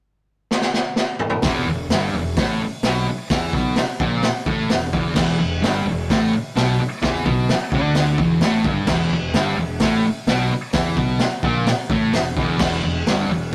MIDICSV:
0, 0, Header, 1, 6, 480
1, 0, Start_track
1, 0, Tempo, 465839
1, 1483, Time_signature, 4, 2, 24, 8
1, 13960, End_track
2, 0, Start_track
2, 0, Title_t, "Distorted electric guitar"
2, 0, Program_c, 0, 30
2, 1502, Note_on_c, 0, 40, 91
2, 1512, Note_on_c, 0, 52, 108
2, 1726, Note_off_c, 0, 40, 0
2, 1731, Note_off_c, 0, 52, 0
2, 1748, Note_on_c, 0, 40, 76
2, 1929, Note_off_c, 0, 40, 0
2, 1991, Note_on_c, 0, 43, 90
2, 1992, Note_on_c, 0, 55, 104
2, 2211, Note_off_c, 0, 43, 0
2, 2212, Note_off_c, 0, 55, 0
2, 2227, Note_on_c, 0, 40, 70
2, 2409, Note_off_c, 0, 40, 0
2, 2464, Note_on_c, 0, 45, 82
2, 2472, Note_on_c, 0, 57, 89
2, 2688, Note_off_c, 0, 45, 0
2, 2693, Note_off_c, 0, 57, 0
2, 2931, Note_on_c, 0, 47, 89
2, 2941, Note_on_c, 0, 59, 106
2, 3162, Note_off_c, 0, 47, 0
2, 3167, Note_off_c, 0, 59, 0
2, 3414, Note_on_c, 0, 52, 99
2, 3421, Note_on_c, 0, 64, 101
2, 3644, Note_off_c, 0, 52, 0
2, 3647, Note_off_c, 0, 64, 0
2, 3654, Note_on_c, 0, 47, 90
2, 3659, Note_on_c, 0, 59, 106
2, 3884, Note_off_c, 0, 47, 0
2, 3886, Note_off_c, 0, 59, 0
2, 4123, Note_on_c, 0, 46, 86
2, 4131, Note_on_c, 0, 58, 92
2, 4358, Note_off_c, 0, 46, 0
2, 4362, Note_off_c, 0, 58, 0
2, 4601, Note_on_c, 0, 45, 94
2, 4611, Note_on_c, 0, 57, 104
2, 4832, Note_on_c, 0, 40, 71
2, 4837, Note_off_c, 0, 45, 0
2, 4842, Note_off_c, 0, 57, 0
2, 5032, Note_off_c, 0, 40, 0
2, 5081, Note_on_c, 0, 40, 90
2, 5086, Note_on_c, 0, 52, 111
2, 5298, Note_off_c, 0, 40, 0
2, 5304, Note_off_c, 0, 52, 0
2, 5310, Note_on_c, 0, 40, 100
2, 5316, Note_on_c, 0, 52, 108
2, 5545, Note_off_c, 0, 40, 0
2, 5554, Note_off_c, 0, 52, 0
2, 5557, Note_on_c, 0, 40, 77
2, 5754, Note_off_c, 0, 40, 0
2, 5791, Note_on_c, 0, 43, 94
2, 5796, Note_on_c, 0, 55, 103
2, 6031, Note_off_c, 0, 43, 0
2, 6034, Note_off_c, 0, 55, 0
2, 6050, Note_on_c, 0, 40, 69
2, 6240, Note_off_c, 0, 40, 0
2, 6291, Note_on_c, 0, 45, 85
2, 6295, Note_on_c, 0, 57, 92
2, 6521, Note_off_c, 0, 45, 0
2, 6523, Note_off_c, 0, 57, 0
2, 6754, Note_on_c, 0, 47, 95
2, 6765, Note_on_c, 0, 59, 98
2, 6992, Note_off_c, 0, 47, 0
2, 6997, Note_off_c, 0, 59, 0
2, 7235, Note_on_c, 0, 52, 92
2, 7244, Note_on_c, 0, 64, 103
2, 7472, Note_off_c, 0, 52, 0
2, 7476, Note_off_c, 0, 64, 0
2, 7480, Note_on_c, 0, 47, 91
2, 7485, Note_on_c, 0, 59, 102
2, 7714, Note_off_c, 0, 47, 0
2, 7717, Note_off_c, 0, 59, 0
2, 7974, Note_on_c, 0, 50, 87
2, 7983, Note_on_c, 0, 62, 95
2, 8431, Note_on_c, 0, 40, 99
2, 8441, Note_off_c, 0, 50, 0
2, 8445, Note_off_c, 0, 62, 0
2, 8449, Note_on_c, 0, 52, 100
2, 8669, Note_off_c, 0, 40, 0
2, 8678, Note_off_c, 0, 52, 0
2, 8680, Note_on_c, 0, 45, 86
2, 8693, Note_on_c, 0, 57, 99
2, 8913, Note_off_c, 0, 45, 0
2, 8918, Note_on_c, 0, 43, 86
2, 8920, Note_off_c, 0, 57, 0
2, 8921, Note_on_c, 0, 55, 107
2, 9149, Note_off_c, 0, 43, 0
2, 9153, Note_on_c, 0, 40, 93
2, 9154, Note_off_c, 0, 55, 0
2, 9165, Note_on_c, 0, 52, 96
2, 9389, Note_off_c, 0, 40, 0
2, 9395, Note_off_c, 0, 52, 0
2, 9415, Note_on_c, 0, 40, 76
2, 9600, Note_off_c, 0, 40, 0
2, 9645, Note_on_c, 0, 43, 89
2, 9653, Note_on_c, 0, 55, 106
2, 9875, Note_off_c, 0, 43, 0
2, 9879, Note_off_c, 0, 55, 0
2, 9887, Note_on_c, 0, 40, 70
2, 10075, Note_off_c, 0, 40, 0
2, 10118, Note_on_c, 0, 45, 84
2, 10124, Note_on_c, 0, 57, 91
2, 10351, Note_off_c, 0, 45, 0
2, 10354, Note_off_c, 0, 57, 0
2, 10597, Note_on_c, 0, 47, 96
2, 10603, Note_on_c, 0, 59, 100
2, 10830, Note_off_c, 0, 47, 0
2, 10833, Note_off_c, 0, 59, 0
2, 11071, Note_on_c, 0, 52, 90
2, 11078, Note_on_c, 0, 64, 110
2, 11302, Note_off_c, 0, 52, 0
2, 11306, Note_on_c, 0, 47, 88
2, 11309, Note_off_c, 0, 64, 0
2, 11313, Note_on_c, 0, 59, 106
2, 11544, Note_off_c, 0, 47, 0
2, 11548, Note_off_c, 0, 59, 0
2, 11785, Note_on_c, 0, 46, 88
2, 11787, Note_on_c, 0, 58, 96
2, 12023, Note_off_c, 0, 46, 0
2, 12024, Note_off_c, 0, 58, 0
2, 12262, Note_on_c, 0, 45, 88
2, 12274, Note_on_c, 0, 57, 99
2, 12501, Note_off_c, 0, 45, 0
2, 12505, Note_on_c, 0, 40, 74
2, 12507, Note_off_c, 0, 57, 0
2, 12701, Note_off_c, 0, 40, 0
2, 12748, Note_on_c, 0, 40, 92
2, 12758, Note_on_c, 0, 52, 96
2, 12980, Note_off_c, 0, 40, 0
2, 12988, Note_off_c, 0, 52, 0
2, 12993, Note_on_c, 0, 40, 96
2, 13005, Note_on_c, 0, 52, 99
2, 13219, Note_off_c, 0, 40, 0
2, 13231, Note_off_c, 0, 52, 0
2, 13232, Note_on_c, 0, 40, 80
2, 13423, Note_off_c, 0, 40, 0
2, 13486, Note_on_c, 0, 43, 94
2, 13492, Note_on_c, 0, 55, 105
2, 13708, Note_off_c, 0, 43, 0
2, 13712, Note_on_c, 0, 40, 67
2, 13714, Note_off_c, 0, 55, 0
2, 13903, Note_off_c, 0, 40, 0
2, 13960, End_track
3, 0, Start_track
3, 0, Title_t, "Fingered electric bass"
3, 0, Program_c, 1, 33
3, 1473, Note_on_c, 1, 28, 93
3, 1701, Note_off_c, 1, 28, 0
3, 1727, Note_on_c, 1, 28, 83
3, 1950, Note_off_c, 1, 28, 0
3, 1973, Note_on_c, 1, 31, 97
3, 2193, Note_off_c, 1, 31, 0
3, 2204, Note_on_c, 1, 28, 86
3, 2428, Note_off_c, 1, 28, 0
3, 2438, Note_on_c, 1, 33, 89
3, 2666, Note_off_c, 1, 33, 0
3, 2914, Note_on_c, 1, 35, 95
3, 3144, Note_off_c, 1, 35, 0
3, 3399, Note_on_c, 1, 40, 94
3, 3627, Note_off_c, 1, 40, 0
3, 3638, Note_on_c, 1, 35, 95
3, 3866, Note_off_c, 1, 35, 0
3, 4119, Note_on_c, 1, 34, 107
3, 4346, Note_off_c, 1, 34, 0
3, 4595, Note_on_c, 1, 33, 99
3, 4824, Note_off_c, 1, 33, 0
3, 4848, Note_on_c, 1, 28, 83
3, 5071, Note_off_c, 1, 28, 0
3, 5085, Note_on_c, 1, 28, 108
3, 5309, Note_off_c, 1, 28, 0
3, 5320, Note_on_c, 1, 28, 97
3, 5546, Note_off_c, 1, 28, 0
3, 5565, Note_on_c, 1, 28, 77
3, 5789, Note_off_c, 1, 28, 0
3, 5804, Note_on_c, 1, 31, 107
3, 6025, Note_off_c, 1, 31, 0
3, 6032, Note_on_c, 1, 28, 93
3, 6261, Note_off_c, 1, 28, 0
3, 6286, Note_on_c, 1, 33, 95
3, 6509, Note_off_c, 1, 33, 0
3, 6764, Note_on_c, 1, 35, 91
3, 6987, Note_off_c, 1, 35, 0
3, 7232, Note_on_c, 1, 40, 89
3, 7460, Note_off_c, 1, 40, 0
3, 7476, Note_on_c, 1, 35, 92
3, 7702, Note_off_c, 1, 35, 0
3, 7951, Note_on_c, 1, 38, 106
3, 8402, Note_off_c, 1, 38, 0
3, 8433, Note_on_c, 1, 28, 95
3, 8660, Note_off_c, 1, 28, 0
3, 8680, Note_on_c, 1, 33, 97
3, 8904, Note_off_c, 1, 33, 0
3, 8909, Note_on_c, 1, 31, 97
3, 9128, Note_off_c, 1, 31, 0
3, 9134, Note_on_c, 1, 28, 93
3, 9370, Note_off_c, 1, 28, 0
3, 9383, Note_on_c, 1, 28, 84
3, 9614, Note_off_c, 1, 28, 0
3, 9626, Note_on_c, 1, 31, 100
3, 9855, Note_off_c, 1, 31, 0
3, 9868, Note_on_c, 1, 28, 90
3, 10096, Note_off_c, 1, 28, 0
3, 10106, Note_on_c, 1, 33, 97
3, 10335, Note_off_c, 1, 33, 0
3, 10577, Note_on_c, 1, 35, 97
3, 10810, Note_off_c, 1, 35, 0
3, 11059, Note_on_c, 1, 40, 90
3, 11290, Note_off_c, 1, 40, 0
3, 11302, Note_on_c, 1, 35, 96
3, 11532, Note_off_c, 1, 35, 0
3, 11775, Note_on_c, 1, 34, 104
3, 12007, Note_off_c, 1, 34, 0
3, 12255, Note_on_c, 1, 33, 98
3, 12487, Note_off_c, 1, 33, 0
3, 12497, Note_on_c, 1, 28, 80
3, 12728, Note_off_c, 1, 28, 0
3, 12744, Note_on_c, 1, 28, 103
3, 12971, Note_off_c, 1, 28, 0
3, 12978, Note_on_c, 1, 28, 95
3, 13207, Note_off_c, 1, 28, 0
3, 13231, Note_on_c, 1, 28, 83
3, 13454, Note_off_c, 1, 28, 0
3, 13460, Note_on_c, 1, 31, 100
3, 13684, Note_off_c, 1, 31, 0
3, 13691, Note_on_c, 1, 28, 87
3, 13922, Note_off_c, 1, 28, 0
3, 13960, End_track
4, 0, Start_track
4, 0, Title_t, "Muted distorted electric guitar strokes"
4, 2708, Note_on_c, 9, 29, 64
4, 2811, Note_off_c, 9, 29, 0
4, 3174, Note_on_c, 9, 29, 58
4, 3277, Note_off_c, 9, 29, 0
4, 3892, Note_on_c, 9, 29, 61
4, 3995, Note_off_c, 9, 29, 0
4, 4375, Note_on_c, 9, 29, 55
4, 4479, Note_off_c, 9, 29, 0
4, 6532, Note_on_c, 9, 29, 61
4, 6635, Note_off_c, 9, 29, 0
4, 7000, Note_on_c, 9, 29, 60
4, 7103, Note_off_c, 9, 29, 0
4, 7737, Note_on_c, 9, 29, 61
4, 7840, Note_off_c, 9, 29, 0
4, 10357, Note_on_c, 9, 29, 60
4, 10460, Note_off_c, 9, 29, 0
4, 10830, Note_on_c, 9, 29, 57
4, 10933, Note_off_c, 9, 29, 0
4, 11545, Note_on_c, 9, 29, 60
4, 11648, Note_off_c, 9, 29, 0
4, 12029, Note_on_c, 9, 29, 54
4, 12133, Note_off_c, 9, 29, 0
4, 13960, End_track
5, 0, Start_track
5, 0, Title_t, "Muted fingered electric bass strokes"
5, 2677, Note_on_c, 9, 29, 39
5, 2780, Note_off_c, 9, 29, 0
5, 3169, Note_on_c, 9, 29, 43
5, 3272, Note_off_c, 9, 29, 0
5, 3902, Note_on_c, 9, 29, 42
5, 4005, Note_off_c, 9, 29, 0
5, 4371, Note_on_c, 9, 29, 44
5, 4474, Note_off_c, 9, 29, 0
5, 6542, Note_on_c, 9, 29, 44
5, 6645, Note_off_c, 9, 29, 0
5, 7014, Note_on_c, 9, 29, 44
5, 7117, Note_off_c, 9, 29, 0
5, 7734, Note_on_c, 9, 29, 43
5, 7837, Note_off_c, 9, 29, 0
5, 10357, Note_on_c, 9, 29, 45
5, 10460, Note_off_c, 9, 29, 0
5, 10835, Note_on_c, 9, 29, 45
5, 10938, Note_off_c, 9, 29, 0
5, 11541, Note_on_c, 9, 29, 46
5, 11644, Note_off_c, 9, 29, 0
5, 12020, Note_on_c, 9, 29, 43
5, 12123, Note_off_c, 9, 29, 0
5, 13960, End_track
6, 0, Start_track
6, 0, Title_t, "Drums"
6, 524, Note_on_c, 9, 38, 69
6, 627, Note_off_c, 9, 38, 0
6, 631, Note_on_c, 9, 38, 78
6, 734, Note_off_c, 9, 38, 0
6, 758, Note_on_c, 9, 38, 84
6, 862, Note_off_c, 9, 38, 0
6, 990, Note_on_c, 9, 38, 95
6, 1093, Note_off_c, 9, 38, 0
6, 1229, Note_on_c, 9, 45, 97
6, 1332, Note_off_c, 9, 45, 0
6, 1336, Note_on_c, 9, 45, 103
6, 1439, Note_off_c, 9, 45, 0
6, 1462, Note_on_c, 9, 46, 69
6, 1465, Note_on_c, 9, 38, 116
6, 1475, Note_on_c, 9, 36, 115
6, 1565, Note_off_c, 9, 46, 0
6, 1568, Note_off_c, 9, 38, 0
6, 1578, Note_off_c, 9, 36, 0
6, 1957, Note_on_c, 9, 46, 65
6, 1960, Note_on_c, 9, 38, 112
6, 2060, Note_off_c, 9, 46, 0
6, 2063, Note_off_c, 9, 38, 0
6, 2439, Note_on_c, 9, 46, 64
6, 2440, Note_on_c, 9, 36, 107
6, 2442, Note_on_c, 9, 38, 116
6, 2542, Note_off_c, 9, 46, 0
6, 2544, Note_off_c, 9, 36, 0
6, 2545, Note_off_c, 9, 38, 0
6, 2915, Note_on_c, 9, 46, 66
6, 2918, Note_on_c, 9, 38, 112
6, 3018, Note_off_c, 9, 46, 0
6, 3021, Note_off_c, 9, 38, 0
6, 3399, Note_on_c, 9, 46, 64
6, 3402, Note_on_c, 9, 36, 107
6, 3402, Note_on_c, 9, 38, 109
6, 3502, Note_off_c, 9, 46, 0
6, 3505, Note_off_c, 9, 36, 0
6, 3505, Note_off_c, 9, 38, 0
6, 3641, Note_on_c, 9, 36, 106
6, 3744, Note_off_c, 9, 36, 0
6, 3872, Note_on_c, 9, 46, 56
6, 3875, Note_on_c, 9, 38, 103
6, 3975, Note_off_c, 9, 46, 0
6, 3978, Note_off_c, 9, 38, 0
6, 4122, Note_on_c, 9, 36, 110
6, 4225, Note_off_c, 9, 36, 0
6, 4352, Note_on_c, 9, 46, 61
6, 4355, Note_on_c, 9, 38, 119
6, 4455, Note_off_c, 9, 46, 0
6, 4458, Note_off_c, 9, 38, 0
6, 4599, Note_on_c, 9, 36, 104
6, 4702, Note_off_c, 9, 36, 0
6, 4839, Note_on_c, 9, 46, 56
6, 4842, Note_on_c, 9, 38, 110
6, 4942, Note_off_c, 9, 46, 0
6, 4945, Note_off_c, 9, 38, 0
6, 5082, Note_on_c, 9, 36, 106
6, 5185, Note_off_c, 9, 36, 0
6, 5313, Note_on_c, 9, 49, 104
6, 5316, Note_on_c, 9, 38, 116
6, 5322, Note_on_c, 9, 36, 104
6, 5416, Note_off_c, 9, 49, 0
6, 5419, Note_off_c, 9, 38, 0
6, 5425, Note_off_c, 9, 36, 0
6, 5805, Note_on_c, 9, 46, 56
6, 5808, Note_on_c, 9, 38, 115
6, 5908, Note_off_c, 9, 46, 0
6, 5911, Note_off_c, 9, 38, 0
6, 6288, Note_on_c, 9, 36, 102
6, 6289, Note_on_c, 9, 46, 61
6, 6292, Note_on_c, 9, 38, 116
6, 6391, Note_off_c, 9, 36, 0
6, 6392, Note_off_c, 9, 46, 0
6, 6395, Note_off_c, 9, 38, 0
6, 6765, Note_on_c, 9, 46, 66
6, 6768, Note_on_c, 9, 38, 114
6, 6868, Note_off_c, 9, 46, 0
6, 6872, Note_off_c, 9, 38, 0
6, 7241, Note_on_c, 9, 36, 115
6, 7241, Note_on_c, 9, 46, 72
6, 7244, Note_on_c, 9, 38, 116
6, 7344, Note_off_c, 9, 36, 0
6, 7344, Note_off_c, 9, 46, 0
6, 7347, Note_off_c, 9, 38, 0
6, 7480, Note_on_c, 9, 36, 109
6, 7583, Note_off_c, 9, 36, 0
6, 7717, Note_on_c, 9, 46, 62
6, 7720, Note_on_c, 9, 38, 105
6, 7820, Note_off_c, 9, 46, 0
6, 7823, Note_off_c, 9, 38, 0
6, 7954, Note_on_c, 9, 36, 112
6, 8057, Note_off_c, 9, 36, 0
6, 8188, Note_on_c, 9, 46, 60
6, 8191, Note_on_c, 9, 38, 109
6, 8291, Note_off_c, 9, 46, 0
6, 8294, Note_off_c, 9, 38, 0
6, 8431, Note_on_c, 9, 36, 103
6, 8534, Note_off_c, 9, 36, 0
6, 8662, Note_on_c, 9, 46, 58
6, 8665, Note_on_c, 9, 38, 105
6, 8765, Note_off_c, 9, 46, 0
6, 8768, Note_off_c, 9, 38, 0
6, 8907, Note_on_c, 9, 36, 113
6, 9010, Note_off_c, 9, 36, 0
6, 9139, Note_on_c, 9, 49, 112
6, 9142, Note_on_c, 9, 38, 119
6, 9144, Note_on_c, 9, 36, 109
6, 9242, Note_off_c, 9, 49, 0
6, 9245, Note_off_c, 9, 38, 0
6, 9247, Note_off_c, 9, 36, 0
6, 9620, Note_on_c, 9, 46, 55
6, 9623, Note_on_c, 9, 38, 111
6, 9723, Note_off_c, 9, 46, 0
6, 9726, Note_off_c, 9, 38, 0
6, 10093, Note_on_c, 9, 46, 65
6, 10097, Note_on_c, 9, 38, 102
6, 10103, Note_on_c, 9, 36, 97
6, 10197, Note_off_c, 9, 46, 0
6, 10200, Note_off_c, 9, 38, 0
6, 10206, Note_off_c, 9, 36, 0
6, 10582, Note_on_c, 9, 46, 61
6, 10585, Note_on_c, 9, 38, 110
6, 10685, Note_off_c, 9, 46, 0
6, 10688, Note_off_c, 9, 38, 0
6, 11054, Note_on_c, 9, 46, 66
6, 11057, Note_on_c, 9, 38, 113
6, 11063, Note_on_c, 9, 36, 115
6, 11157, Note_off_c, 9, 46, 0
6, 11160, Note_off_c, 9, 38, 0
6, 11166, Note_off_c, 9, 36, 0
6, 11302, Note_on_c, 9, 36, 109
6, 11405, Note_off_c, 9, 36, 0
6, 11529, Note_on_c, 9, 46, 60
6, 11532, Note_on_c, 9, 38, 105
6, 11632, Note_off_c, 9, 46, 0
6, 11635, Note_off_c, 9, 38, 0
6, 11778, Note_on_c, 9, 36, 110
6, 11881, Note_off_c, 9, 36, 0
6, 12018, Note_on_c, 9, 46, 59
6, 12021, Note_on_c, 9, 38, 108
6, 12121, Note_off_c, 9, 46, 0
6, 12124, Note_off_c, 9, 38, 0
6, 12259, Note_on_c, 9, 36, 110
6, 12362, Note_off_c, 9, 36, 0
6, 12500, Note_on_c, 9, 46, 63
6, 12503, Note_on_c, 9, 38, 112
6, 12603, Note_off_c, 9, 46, 0
6, 12606, Note_off_c, 9, 38, 0
6, 12742, Note_on_c, 9, 36, 108
6, 12845, Note_off_c, 9, 36, 0
6, 12974, Note_on_c, 9, 49, 111
6, 12977, Note_on_c, 9, 38, 117
6, 12978, Note_on_c, 9, 36, 113
6, 13077, Note_off_c, 9, 49, 0
6, 13080, Note_off_c, 9, 38, 0
6, 13081, Note_off_c, 9, 36, 0
6, 13463, Note_on_c, 9, 46, 55
6, 13466, Note_on_c, 9, 38, 113
6, 13566, Note_off_c, 9, 46, 0
6, 13569, Note_off_c, 9, 38, 0
6, 13960, End_track
0, 0, End_of_file